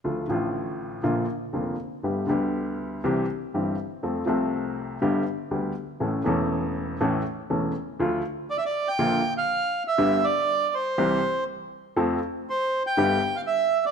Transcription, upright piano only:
X:1
M:4/4
L:1/8
Q:1/4=121
K:Dm
V:1 name="Upright piano" clef=bass
[D,,D,F,A,F] [A,,,A,,D,F,A,F]3 [B,,,B,,D,F,B,F] z [F,,,F,,D,F,B,F] z | [G,,,G,,D,G,=B,G] [D,,D,G,B,G]3 [C,,C,E,G,CG] z [G,,,G,,E,G,CG] z | [F,,F,A,CA] [C,,C,F,A,CA]3 [G,,,G,,D,G,=B,G] z [D,,D,G,B,G] z | [A,,,A,,E,A,^CA] [E,,,E,,E,A,CA]3 [A,,,A,,E,A,CA] z [E,,,E,,E,A,CA] z |
[D,,D,F,A,F] z3 [B,,,B,,D,F,B,F] z3 | [G,,,G,,D,G,=B,G] z3 [C,,C,E,G,CG] z3 | [F,,F,A,CA] z3 [G,,,G,,D,G,=B,G] z3 |]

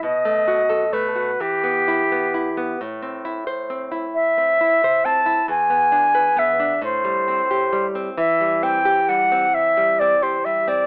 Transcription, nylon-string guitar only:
X:1
M:6/8
L:1/16
Q:3/8=44
K:Ador
V:1 name="Nylon-string guitar"
B,, A, F A A, F E, B, E B, E B, | A,, C E c C E2 C E c C E | E,, B, D B B, D A,, G, C G G, C | [K:Clyd] E, G, C G G, C2 G, C G G, C |]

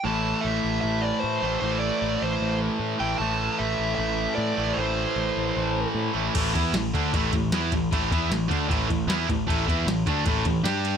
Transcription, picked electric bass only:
X:1
M:4/4
L:1/8
Q:1/4=153
K:Am
V:1 name="Picked electric bass" clef=bass
A,,,2 A,,, A,,, A,,,2 A,, A,,, | A,,,2 A,,, A,,, A,,,2 A,, A,,, | A,,,2 A,,, A,,, A,,,2 A,, A,,, | A,,,2 A,,, A,,, A,,,2 A,, A,,, |
A,,, E,, A,,, D,, A,,, A,,, E,, A,,, | A,,, E,, A,,, D,, A,,, A,,, E,, A,,, | A,,, E,, A,,, D,, A,,, A,,, G,,2 |]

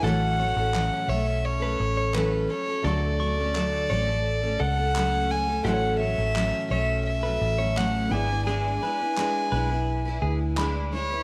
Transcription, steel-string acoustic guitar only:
X:1
M:4/4
L:1/16
Q:1/4=85
K:A
V:1 name="Steel-string acoustic guitar"
[A,,E,F,A,CA]2 [F,A,CA] [F,A,CA] [A,,E,F,A,CA]2 [F,A,CA]3 [F,A,CA]3 [A,,E,F,A,CA]2 [F,A,CA] [F,A,CA] | [D,F,A,A]2 [F,A,CA] [A,CA] [D,F,A,A]2 [F,A,CA] [A,A]2 [A,CA]2 [A,CA] [F,A,CA]2 [F,A,CA] [A,CA] | [A,,E,F,A,CA]2 [F,A,CA] [F,A,CA] [A,,E,F,A,CA]2 [F,A,CA]3 [F,A,CA]2 [F,A,CA] [A,,E,F,A,CA]2 [G,DEB] [DEB] | [G,DEB]2 [G,DEB] [DEB] [G,DEB]2 [G,DEB] [DEB]2 [DEB]3 [G,DEB]2 [G,DEB] [DEB] |]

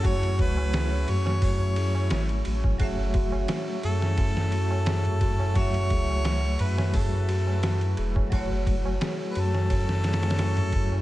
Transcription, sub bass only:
X:1
M:4/4
L:1/8
Q:"Swing 16ths" 1/4=87
K:F#m
V:1 name="Sub bass" clef=bass
F,, C,,2 F,,3 G,,, A,,, | F,,,2 z F,,4- F,,- | F,, C,,2 F,,4 E,,, | F,,,2 z F,,4- F,, |]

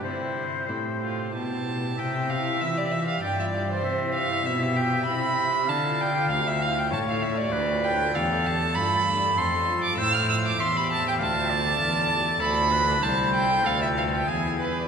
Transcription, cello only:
X:1
M:3/4
L:1/8
Q:1/4=97
K:C
V:1 name="Cello" clef=bass
C,2 A,,2 B,,2 | C,2 E,2 G,,2 | C,2 B,,2 C,2 | D,2 D,,2 A,,2 |
D,,2 E,,2 G,,2 | [K:Ddor] F,,2 A,,2 E,,2 | D,,2 E,,2 D,,2 | C,,2 D,,2 E,,2 |]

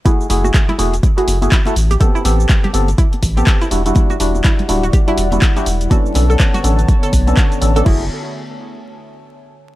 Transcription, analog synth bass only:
X:1
M:4/4
L:1/8
Q:"Swing 16ths" 1/4=123
K:F#phr
V:1 name="Analog synth bass" clef=bass
z F,,, z E,,, z F,,, z A,,, | z A,,, z G,,, z A,,, z E,,, | z E,,, z D,,, z E,,, z E,,, | z B,,, z A,,, z B,,, z A,,, |
F,,, z6 z |]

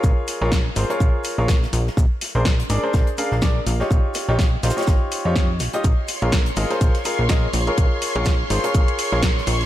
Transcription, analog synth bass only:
X:1
M:4/4
L:1/16
Q:"Swing 16ths" 1/4=124
K:Bbdor
V:1 name="Analog synth bass" clef=bass
B,,, z2 B,,,2 z A,,, z B,,, z2 B,,,2 z B,,, z | B,,, z2 B,,,2 z A,,, z B,,, z2 B,,,2 z B,,, z | B,,, z2 B,,,2 z B,,, z B,,, z2 F,,3 B,,, z | B,,, z2 B,,,2 z A,,, z B,,, z2 B,,,2 z B,,, z |
B,,, z2 B,,,2 z A,,, z B,,, z2 B,,,2 z B,,, z |]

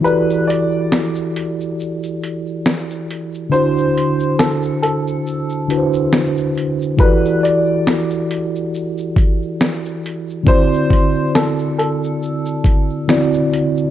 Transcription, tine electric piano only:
X:1
M:4/4
L:1/8
Q:"Swing 16ths" 1/4=69
K:Em
V:1 name="Tine electric piano"
[E,EFGAd]8 | [D,DEFc]4- [D,DEFc] [D,DEFBc]3 | [E,EFGAd]8 | [D,CEFd]6 [D,CEFd]2 |]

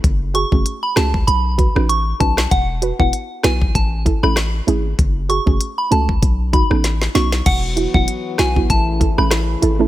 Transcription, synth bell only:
X:1
M:4/4
L:1/16
Q:"Swing 16ths" 1/4=97
K:E
V:1 name="Synth bell"
z2 c' z2 b a z b3 z c' z a z | f z2 f z2 g z a z2 b z4 | z2 c' z2 b a z3 b z3 c' z | f z2 f z2 g z a z2 b z4 |]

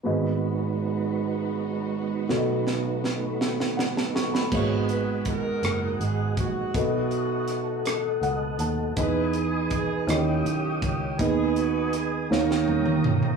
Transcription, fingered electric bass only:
X:1
M:6/8
L:1/8
Q:3/8=54
K:G#m
V:1 name="Fingered electric bass" clef=bass
z6 | z6 | G,,,3 F,,, G,,, A,,, | B,,,3 =A,,, C,, D,, |
E,,3 D,, B,,, C,, | D,,3 D,, E,,, =G,,, |]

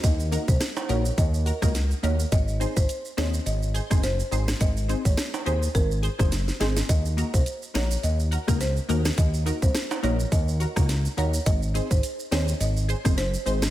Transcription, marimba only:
X:1
M:4/4
L:1/16
Q:"Swing 16ths" 1/4=105
K:Ebdor
V:1 name="Marimba"
e2 z c z2 d z e3 z3 d z | e2 z c z2 d z e3 z c3 z | e2 z d z2 c z B3 z3 A z | e2 z c z2 d z e3 z c3 z |
e2 z c z2 d z e3 z3 d z | e2 z c z2 d z e3 z c3 z |]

